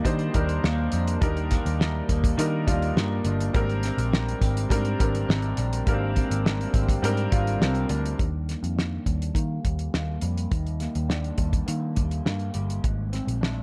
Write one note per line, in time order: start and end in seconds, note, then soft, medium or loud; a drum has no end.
0.00 1.21 D#3 medium
0.00 0.03 G3 medium
0.00 0.31 G3 medium
0.00 0.63 A#3 medium
0.00 0.04 D4 medium
0.00 0.34 D4 medium
0.00 0.05 D#4 medium
0.00 0.35 A#4 medium
0.04 0.28 D#3 loud
0.04 1.80 G3 medium
0.04 0.32 D4 medium
0.04 0.33 D#4 medium
0.04 0.33 C5 medium
0.04 kick medium
0.04 closed hi-hat medium
0.19 closed hi-hat soft
0.33 0.58 D#2 loud
0.33 1.16 G3 medium
0.33 1.16 D4 medium
0.33 0.93 D4 medium
0.33 1.17 D#4 medium
0.33 1.17 A#4 medium
0.33 kick medium
0.33 closed hi-hat medium
0.49 closed hi-hat soft
0.64 0.87 D#2 medium
0.64 1.50 A#3 medium
0.64 snare loud
0.92 1.16 F2 medium
0.92 2.67 D4 medium
0.92 closed hi-hat medium
1.07 closed hi-hat medium
1.20 1.57 D#2 loud
1.20 4.72 D#3 medium
1.20 2.31 G3 medium
1.20 2.31 D4 medium
1.20 2.32 D#4 medium
1.20 2.32 A#4 loud
1.20 kick loud
1.20 closed hi-hat medium
1.37 closed hi-hat soft
1.51 2.09 A#3 medium
1.51 kick medium
1.51 snare soft
1.51 closed hi-hat medium
1.66 2.01 D#2 medium
1.66 closed hi-hat medium
1.80 2.37 G3 medium
1.80 snare loud
2.09 2.32 D#2 medium
2.09 2.96 A#3 medium
2.09 kick medium
2.09 closed hi-hat medium
2.24 kick loud
2.24 closed hi-hat medium
2.37 2.69 D#3 loud
2.37 2.64 G3 medium
2.37 4.12 G3 medium
2.37 2.65 D4 medium
2.37 2.66 D#4 medium
2.37 2.66 A#4 medium
2.37 closed hi-hat medium
2.66 2.91 D#2 medium
2.66 3.49 G3 medium
2.66 3.49 D4 medium
2.66 3.25 D4 medium
2.66 3.50 D#4 medium
2.66 3.50 F4 medium
2.66 kick medium
2.66 closed hi-hat medium
2.82 closed hi-hat soft
2.96 3.19 G2 medium
2.96 3.83 A#3 medium
2.96 snare loud
3.25 3.48 G1 medium
3.25 3.87 D4 medium
3.25 closed hi-hat medium
3.40 closed hi-hat medium
3.53 3.89 G#1 loud
3.53 5.86 G#2 medium
3.53 4.64 G3 medium
3.53 4.64 C4 medium
3.53 4.64 D4 medium
3.53 4.65 A#4 loud
3.53 kick loud
3.53 closed hi-hat medium
3.70 closed hi-hat soft
3.83 4.41 C4 medium
3.83 snare soft
3.83 closed hi-hat medium
3.98 4.33 A#1 medium
3.98 closed hi-hat medium
4.12 4.71 G3 medium
4.12 snare loud
4.29 closed hi-hat soft
4.41 4.65 G#1 medium
4.41 5.27 C4 medium
4.41 kick medium
4.41 closed hi-hat medium
4.57 closed hi-hat medium
4.69 4.94 G#2 loud
4.69 4.97 G3 medium
4.69 6.45 G3 medium
4.69 4.98 C4 medium
4.69 4.98 D4 medium
4.69 4.99 A#4 loud
4.69 kick medium
4.69 closed hi-hat loud
4.85 closed hi-hat soft
4.98 5.23 G#1 medium
4.98 5.81 G3 medium
4.98 5.82 C4 medium
4.98 5.57 D4 medium
4.98 5.82 D4 medium
4.98 5.82 A#4 medium
4.98 kick medium
4.98 closed hi-hat medium
5.15 closed hi-hat medium
5.29 5.52 G#1 medium
5.29 6.14 C4 medium
5.29 snare loud
5.42 closed hi-hat soft
5.57 5.81 A#1 loud
5.57 7.31 D4 medium
5.57 closed hi-hat medium
5.73 closed hi-hat medium
5.86 6.22 G#1 loud
5.86 8.19 G#2 medium
5.86 6.96 G3 medium
5.86 5.93 A#3 medium
5.86 6.97 D4 medium
5.86 6.97 A#4 medium
5.86 kick loud
5.86 closed hi-hat medium
5.93 7.00 C4 medium
6.16 6.73 C4 medium
6.16 kick medium
6.16 closed hi-hat medium
6.30 6.65 G#1 medium
6.30 closed hi-hat medium
6.45 7.03 G3 medium
6.45 snare loud
6.61 closed hi-hat soft
6.74 6.97 G#1 medium
6.74 7.60 C4 medium
6.74 kick medium
6.74 closed hi-hat medium
6.89 kick medium
6.89 closed hi-hat medium
7.02 7.26 G#2 loud
7.02 7.29 G3 medium
7.02 9.05 G3 medium
7.02 7.30 C4 medium
7.02 7.30 D4 medium
7.02 7.31 A#4 loud
7.02 closed hi-hat medium
7.17 closed hi-hat soft
7.30 7.55 G#1 loud
7.30 8.13 G3 medium
7.30 8.14 C4 medium
7.30 7.89 D4 medium
7.30 8.14 D4 medium
7.30 8.15 F4 medium
7.30 kick medium
7.30 closed hi-hat medium
7.47 closed hi-hat soft
7.61 7.84 C2 medium
7.61 8.25 C4 medium
7.61 snare loud
7.75 closed hi-hat soft
7.89 8.13 D2 medium
7.89 8.76 D4 medium
7.89 closed hi-hat medium
8.06 closed hi-hat medium
8.19 8.54 D#2 medium
8.19 10.51 D#3 medium
8.19 kick loud
8.19 closed hi-hat medium
8.48 9.35 A#3 soft
8.48 snare soft
8.48 closed hi-hat medium
8.63 8.97 F2 medium
8.63 closed hi-hat medium
8.76 11.08 D4 medium
8.76 snare medium
9.06 9.29 D#2 medium
9.06 9.64 G3 medium
9.06 kick medium
9.06 closed hi-hat medium
9.22 closed hi-hat medium
9.35 9.58 D#3 medium
9.35 9.93 A#3 medium
9.35 kick medium
9.35 closed hi-hat medium
9.64 9.88 D#2 medium
9.64 10.22 G3 soft
9.64 kick medium
9.64 closed hi-hat medium
9.79 closed hi-hat soft
9.94 10.17 D#2 medium
9.94 10.80 A#3 medium
9.94 snare loud
10.21 10.46 F2 medium
10.21 11.37 G3 medium
10.21 closed hi-hat medium
10.38 closed hi-hat medium
10.51 10.86 D#2 medium
10.51 13.44 D#3 medium
10.51 kick loud
10.51 closed hi-hat medium
10.67 closed hi-hat soft
10.80 11.66 A#3 soft
10.80 snare soft
10.80 closed hi-hat medium
10.95 11.30 D#2 medium
10.95 closed hi-hat medium
11.09 13.16 D4 medium
11.09 snare medium
11.24 closed hi-hat soft
11.38 11.62 D#2 medium
11.38 11.95 G3 medium
11.38 kick medium
11.38 closed hi-hat medium
11.53 kick medium
11.53 closed hi-hat medium
11.66 11.98 D#3 medium
11.66 12.25 A#3 medium
11.66 closed hi-hat medium
11.96 12.20 D#2 medium
11.96 12.54 G3 medium
11.96 kick medium
11.96 closed hi-hat medium
12.11 closed hi-hat soft
12.25 12.49 G2 medium
12.25 13.12 A#3 medium
12.25 snare loud
12.39 closed hi-hat soft
12.54 12.78 G1 medium
12.54 13.63 G3 medium
12.54 closed hi-hat medium
12.70 closed hi-hat soft
12.83 13.19 G#1 loud
12.83 13.63 G#2 medium
12.83 kick loud
12.83 closed hi-hat medium
13.13 13.63 C4 soft
13.13 snare soft
13.13 closed hi-hat medium
13.27 13.62 A#1 medium
13.27 closed hi-hat medium
13.41 13.63 D4 medium
13.41 snare loud